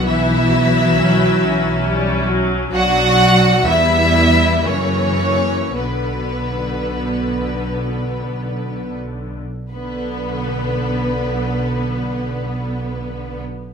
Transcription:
Already playing: B1 B3
0.05 E3 E4 E5
0.52 F#3
0.96 C#4
1.40 C#4
1.85 G3
2.28 F#3
2.72 B1 F#3 D4 F#4 F#5
3.65 E2 E3 G3 B3 E4 E5
4.63 F#2 C#3 E3 A#3 C#4 C#5
5.75 B1 B2 D3 B3 B4
9.71 B1 D3 B3 B4

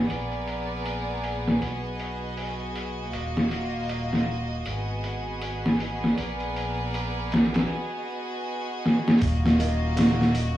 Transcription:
Already playing: B3 G#4
0.09 A#1 A#4 D5, open hi-hat
0.32 closed hi-hat
0.47 open hi-hat
0.86 open hi-hat
1.24 open hi-hat
1.48 snare
1.61 B1 F#4 D#5, open hi-hat
2.00 open hi-hat
2.37 open hi-hat
2.60 closed hi-hat
2.75 open hi-hat
3.13 D#1 A#3 F4, open hi-hat
3.37 snare
3.51 open hi-hat
3.89 open hi-hat
4.13 snare
4.65 G#1 B3 G#4, open hi-hat
5.04 open hi-hat
5.42 open hi-hat
5.66 snare
5.80 open hi-hat
6.04 snare
6.17 A#1 A#4 D5, open hi-hat
6.40 closed hi-hat
6.56 open hi-hat
6.94 open hi-hat
7.32 snare, open hi-hat
7.54 snare, open hi-hat
7.69 F#4 D#5
8.86 snare
9.08 snare
9.19 D#1 A#3 F4 F#4 D#5, kick, open hi-hat
9.46 snare
9.60 D#3, open hi-hat
9.96 D3, snare, open hi-hat
10.21 snare
10.35 open hi-hat

